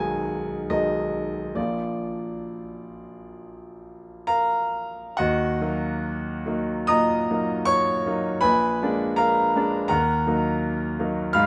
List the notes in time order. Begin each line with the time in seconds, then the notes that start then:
Already playing: B1 D#3 G#3 G#4 D#5 F5 F#5 G#5
0.70 B1 D#3 G#3 G#4 D#5
1.55 A#1 F3 A#3 F4 D5
4.27 A#4 F5 A#5
5.17 D#2 F#4 D#5 F#5
5.61 F#3 A#3 D#4
6.46 F#3 A#3 D#4
6.87 A#2 D#5 A#5 D#6
7.30 F#3 A#3 D#4
7.65 C#5 C#6
8.06 F#3 A#3 D#4
8.41 A#1 B4 G#5 B5
8.82 G#3 A#3 D4
9.16 A#4 F5 A#5
9.55 G#3 A#3 D4
9.88 D#2 A#4 F#5 A#5
10.26 F#3 A#3 D#4
10.99 F#3 A#3 D#4
11.33 G#2 F5 B5 F6